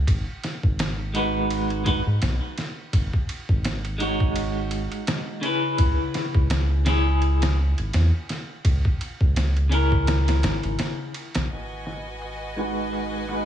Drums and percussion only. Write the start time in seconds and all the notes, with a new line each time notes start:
0.07 kick, ride
0.44 snare, ride
0.63 kick
0.79 snare, ride
1.15 ride
1.50 ride
1.70 ride
1.86 kick, ride
2.22 snare, ride
2.58 snare, ride
2.93 kick, ride
3.13 kick
3.29 ride
3.49 kick
3.64 snare, ride
3.85 ride
4.00 ride
4.20 kick
4.36 ride
4.71 ride
4.92 ride
5.07 snare, ride
5.43 ride
5.78 kick, ride
6.14 snare, ride
6.35 kick
6.50 snare, ride
6.86 snare, ride
7.22 ride
7.42 snare, ride
7.78 ride
7.93 snare, ride
8.29 snare, ride
8.65 kick, ride
8.85 kick
9.01 ride
9.21 kick
9.36 snare, ride
9.57 ride
9.72 ride
9.92 kick
10.07 snare, ride
10.28 snare, ride
10.43 snare, ride
10.63 ride
10.79 snare, ride
11.14 ride
11.35 snare, ride
11.50 ride
11.86 snare, ride
12.21 ride
12.57 ride
12.93 ride
13.13 ride
13.29 ride